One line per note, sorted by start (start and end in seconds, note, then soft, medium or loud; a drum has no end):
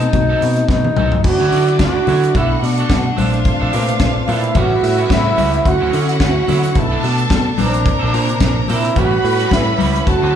0.00 0.12 B2 medium
0.00 0.13 A3 medium
0.00 1.20 A3 medium
0.00 0.14 C4 medium
0.00 1.20 C4 medium
0.00 0.69 D#4 loud
0.00 1.20 D#4 medium
0.00 0.14 F#4 medium
0.00 0.65 A4 medium
0.00 0.65 A5 loud
0.00 muted clean electric guitar stroke soft
0.00 closed hi-hat medium
0.12 0.34 B1 loud
0.12 0.89 B2 medium
0.12 0.89 A3 medium
0.12 0.90 C4 medium
0.12 0.90 F#4 medium
0.12 muted clean electric guitar stroke soft
0.12 kick loud
0.12 closed hi-hat medium
0.12 muted conga medium
0.12 low conga medium
0.29 0.41 C4 medium
0.29 0.42 D#4 medium
0.29 0.43 A4 medium
0.41 0.62 B2 loud
0.41 muted clean electric guitar stroke soft
0.41 open hi-hat medium
0.41 muted conga soft
0.56 muted clean electric guitar stroke soft
0.56 closed hi-hat soft
0.68 0.89 B2 loud
0.68 1.21 D#4 loud
0.68 muted clean electric guitar stroke soft
0.68 kick loud
0.68 snare medium
0.68 high conga medium
0.84 muted clean electric guitar stroke medium
0.84 high tom medium
0.96 1.17 C2 loud
0.96 1.17 C4 medium
0.96 1.13 D#4 loud
0.96 1.12 A4 loud
0.96 mid tom medium
0.96 high conga medium
1.12 muted clean electric guitar stroke soft
1.12 floor tom medium
1.23 1.36 D2 loud
1.23 1.44 D3 medium
1.23 2.34 D3 medium
1.23 2.33 F#3 medium
1.23 1.44 C#4 medium
1.23 2.33 D4 medium
1.23 2.34 E4 medium
1.23 1.44 E4 medium
1.23 1.44 F#4 medium
1.23 1.76 F#4 loud
1.23 2.32 D5 medium
1.23 muted clean electric guitar stroke soft
1.23 kick loud
1.23 crash loud
1.40 1.49 D2 medium
1.40 1.52 E4 medium
1.40 1.53 F#4 medium
1.40 1.55 C#5 medium
1.51 2.28 D3 medium
1.51 1.81 D3 loud
1.51 2.28 D4 medium
1.51 2.28 E4 medium
1.51 1.69 E4 medium
1.51 2.28 F#4 medium
1.51 1.69 F#4 medium
1.51 1.68 D5 medium
1.51 open hi-hat medium
1.68 muted clean electric guitar stroke medium
1.68 closed hi-hat medium
1.79 2.00 D2 loud
1.79 2.38 F#4 loud
1.79 muted clean electric guitar stroke soft
1.79 kick loud
1.79 snare loud
1.79 closed hi-hat medium
1.79 high conga medium
1.97 muted clean electric guitar stroke medium
2.07 2.27 D3 loud
2.07 2.27 E4 medium
2.07 2.23 F#4 medium
2.07 2.22 C#5 medium
2.07 open hi-hat medium
2.07 muted conga medium
2.07 low conga medium
2.23 muted clean electric guitar stroke soft
2.23 closed hi-hat medium
2.34 2.55 B1 loud
2.34 3.02 B2 medium
2.34 3.17 B2 medium
2.34 4.53 A3 medium
2.34 3.02 B3 medium
2.34 3.02 D4 medium
2.34 4.54 D4 loud
2.34 2.55 D4 medium
2.34 2.65 E4 loud
2.34 3.16 F#4 medium
2.34 2.50 F#4 medium
2.34 3.03 A4 medium
2.34 2.49 A4 medium
2.34 3.16 F#5 medium
2.34 kick loud
2.34 closed hi-hat medium
2.34 muted conga medium
2.51 muted clean electric guitar stroke medium
2.63 2.82 B2 medium
2.63 3.18 D4 medium
2.63 muted clean electric guitar stroke soft
2.63 open hi-hat medium
2.77 2.90 D4 medium
2.77 2.91 F#4 medium
2.77 2.91 A4 medium
2.77 closed hi-hat soft
2.90 3.10 B2 loud
2.90 muted clean electric guitar stroke soft
2.90 kick loud
2.90 snare loud
2.90 closed hi-hat medium
2.90 high conga medium
3.06 muted clean electric guitar stroke soft
3.17 3.49 A#1 loud
3.17 3.63 A#2 medium
3.17 4.55 C3 medium
3.17 3.63 A3 medium
3.17 3.37 C4 medium
3.17 3.63 D4 medium
3.17 3.33 D4 medium
3.17 4.31 D4 medium
3.17 4.53 F4 medium
3.17 3.32 A4 medium
3.17 3.63 C5 medium
3.17 4.53 F5 medium
3.17 open hi-hat medium
3.17 high conga medium
3.33 muted clean electric guitar stroke soft
3.33 closed hi-hat soft
3.45 muted clean electric guitar stroke soft
3.45 kick loud
3.45 closed hi-hat medium
3.60 3.70 A#1 loud
3.60 3.71 C4 medium
3.60 3.72 D4 medium
3.60 3.73 A4 medium
3.72 4.48 A#2 medium
3.72 3.93 A#2 loud
3.72 4.49 A3 medium
3.72 3.89 C4 medium
3.72 3.88 D4 medium
3.72 4.49 D4 medium
3.72 3.88 A#4 medium
3.72 3.80 B4 medium
3.72 open hi-hat medium
3.80 4.52 C5 medium
3.88 muted clean electric guitar stroke soft
3.88 closed hi-hat medium
3.99 4.20 A#1 loud
3.99 muted clean electric guitar stroke soft
3.99 kick loud
3.99 snare loud
3.99 closed hi-hat medium
3.99 high conga medium
4.16 muted clean electric guitar stroke medium
4.28 4.48 A#2 loud
4.28 4.48 C4 loud
4.28 4.43 D4 medium
4.28 4.58 E4 loud
4.28 4.42 A4 loud
4.28 open hi-hat medium
4.28 muted conga medium
4.43 muted clean electric guitar stroke soft
4.43 closed hi-hat medium
4.54 4.75 A1 loud
4.54 5.65 C#3 medium
4.54 5.44 G3 medium
4.54 4.75 G3 medium
4.54 5.65 G3 medium
4.54 5.44 A3 medium
4.54 5.65 B3 medium
4.54 4.71 C#4 loud
4.54 5.64 E4 medium
4.54 5.65 F#4 medium
4.54 5.14 F#4 loud
4.54 4.69 F#4 loud
4.54 5.44 B4 medium
4.54 5.44 C#5 medium
4.54 5.63 E5 medium
4.54 4.63 F5 medium
4.54 kick loud
4.54 closed hi-hat medium
4.54 muted conga medium
4.54 low conga medium
4.62 5.48 F#5 medium
4.71 muted clean electric guitar stroke medium
4.83 5.03 A2 medium
4.83 muted clean electric guitar stroke soft
4.83 open hi-hat medium
4.98 5.09 G3 medium
4.98 5.09 C#4 medium
4.98 5.10 F#4 medium
4.98 closed hi-hat soft
5.10 5.30 A2 medium
5.10 5.69 E4 loud
5.10 muted clean electric guitar stroke soft
5.10 kick loud
5.10 snare loud
5.10 closed hi-hat medium
5.10 high conga medium
5.25 muted clean electric guitar stroke medium
5.36 5.59 C#2 loud
5.36 5.57 G3 medium
5.36 5.53 C#4 medium
5.36 5.51 F#4 loud
5.36 open hi-hat medium
5.36 high conga medium
5.53 muted clean electric guitar stroke medium
5.53 closed hi-hat soft
5.65 5.77 D2 loud
5.65 5.85 D3 medium
5.65 6.75 F#3 medium
5.65 5.85 C#4 medium
5.65 6.75 C#4 medium
5.65 5.86 E4 medium
5.65 6.75 E4 medium
5.65 6.74 F#4 medium
5.65 5.86 F#4 medium
5.65 5.98 F#4 loud
5.65 6.74 F#5 medium
5.65 muted clean electric guitar stroke soft
5.65 kick loud
5.65 closed hi-hat medium
5.80 5.90 D2 medium
5.80 5.91 F#3 medium
5.80 5.92 C#4 medium
5.80 5.93 E4 medium
5.92 6.69 D3 medium
5.92 6.22 D3 loud
5.92 6.09 F#3 medium
5.92 6.69 C#4 medium
5.92 6.08 C#4 medium
5.92 6.69 E4 medium
5.92 6.08 F#4 medium
5.92 6.70 F#4 medium
5.92 open hi-hat medium
6.08 muted clean electric guitar stroke soft
6.08 closed hi-hat medium
6.20 6.41 D2 loud
6.20 6.80 F#4 loud
6.20 muted clean electric guitar stroke soft
6.20 kick loud
6.20 snare loud
6.20 closed hi-hat medium
6.20 high conga medium
6.36 muted clean electric guitar stroke soft
6.48 6.69 D3 loud
6.48 6.68 F#3 loud
6.48 6.64 C#4 medium
6.48 6.62 E4 loud
6.48 open hi-hat medium
6.48 muted conga medium
6.48 low conga medium
6.63 muted clean electric guitar stroke soft
6.63 closed hi-hat medium
6.75 6.96 B1 loud
6.75 7.43 B2 medium
6.75 7.58 B2 medium
6.75 7.58 A3 medium
6.75 7.43 B3 medium
6.75 7.43 D4 medium
6.75 8.94 D4 medium
6.75 7.05 E4 medium
6.75 6.83 G#4 medium
6.75 7.57 A4 medium
6.75 7.57 A5 loud
6.75 muted clean electric guitar stroke soft
6.75 kick loud
6.75 closed hi-hat medium
6.75 muted conga medium
6.83 7.47 A4 medium
6.91 7.02 B3 medium
6.91 7.03 D4 medium
6.91 7.04 A4 loud
7.03 7.24 B2 medium
7.03 7.20 B3 medium
7.03 7.19 D4 medium
7.03 7.18 A4 medium
7.03 open hi-hat medium
7.03 muted conga soft
7.18 muted clean electric guitar stroke soft
7.18 closed hi-hat soft
7.30 7.51 B2 loud
7.30 muted clean electric guitar stroke soft
7.30 kick loud
7.30 snare loud
7.30 closed hi-hat medium
7.30 high conga medium
7.46 muted clean electric guitar stroke medium
7.57 7.90 A#1 loud
7.57 8.04 A#2 medium
7.57 8.94 C3 medium
7.57 8.94 A#3 medium
7.57 8.04 A#3 medium
7.57 7.78 C4 medium
7.57 7.73 D4 medium
7.57 8.04 D4 medium
7.57 8.65 D4 medium
7.57 7.72 A4 loud
7.57 8.94 A#4 medium
7.57 7.66 B4 medium
7.57 8.94 A#5 medium
7.57 open hi-hat medium
7.57 high conga medium
7.65 8.07 C5 medium
7.73 muted clean electric guitar stroke soft
7.73 closed hi-hat soft
7.85 muted clean electric guitar stroke soft
7.85 kick loud
7.85 closed hi-hat medium
7.99 8.11 A#1 loud
7.99 8.11 C4 medium
7.99 8.12 D4 medium
7.99 8.14 A4 medium
8.13 8.89 A#2 medium
8.13 8.34 A#2 loud
8.13 8.89 A#3 medium
8.13 8.29 C4 medium
8.13 8.28 D4 medium
8.13 8.90 D4 medium
8.13 8.28 A#4 medium
8.13 8.90 C5 medium
8.13 open hi-hat medium
8.29 muted clean electric guitar stroke soft
8.29 closed hi-hat medium
8.40 8.61 A#1 loud
8.40 muted clean electric guitar stroke medium
8.40 kick loud
8.40 snare loud
8.40 closed hi-hat medium
8.40 high conga medium
8.56 muted clean electric guitar stroke soft
8.68 8.89 A#2 loud
8.68 8.88 C4 medium
8.68 8.85 D4 medium
8.68 9.00 E4 loud
8.68 8.84 A4 loud
8.68 open hi-hat medium
8.68 muted conga medium
8.85 muted clean electric guitar stroke medium
8.85 closed hi-hat medium
8.96 9.16 A1 loud
8.96 9.85 G3 medium
8.96 9.16 G3 medium
8.96 10.06 G3 medium
8.96 9.85 A3 medium
8.96 10.06 B3 medium
8.96 10.36 C#4 medium
8.96 9.12 C#4 medium
8.96 10.06 F#4 medium
8.96 9.11 F#4 medium
8.96 9.55 F#4 loud
8.96 9.85 B4 medium
8.96 10.05 B4 medium
8.96 9.85 C#5 medium
8.96 9.86 F#5 medium
8.96 10.05 B5 loud
8.96 kick loud
8.96 closed hi-hat medium
8.96 muted conga medium
8.96 low conga medium
9.12 muted clean electric guitar stroke soft
9.24 9.44 A2 loud
9.24 muted clean electric guitar stroke soft
9.24 open hi-hat medium
9.39 9.50 G3 medium
9.39 9.51 C#4 medium
9.39 9.51 F#4 medium
9.39 closed hi-hat soft
9.51 9.72 A2 medium
9.51 10.09 E4 loud
9.51 muted clean electric guitar stroke soft
9.51 kick loud
9.51 snare loud
9.51 closed hi-hat medium
9.51 high conga medium
9.66 muted clean electric guitar stroke medium
9.78 10.00 C#2 medium
9.78 9.98 G3 medium
9.78 9.93 C#4 medium
9.78 9.92 F#4 medium
9.78 open hi-hat medium
9.78 high conga loud
9.94 muted clean electric guitar stroke medium
9.94 closed hi-hat soft
10.06 10.18 D2 loud
10.06 10.26 D3 medium
10.06 10.36 F#3 medium
10.06 10.26 C#4 medium
10.06 10.26 E4 medium
10.06 10.36 E4 medium
10.06 10.36 F#4 loud
10.06 10.27 F#4 medium
10.06 10.36 A4 medium
10.06 10.36 A5 medium
10.06 muted clean electric guitar stroke soft
10.06 kick loud
10.06 closed hi-hat medium
10.22 10.32 D2 medium
10.22 10.32 F#3 medium
10.22 10.33 C#4 medium
10.22 10.34 E4 medium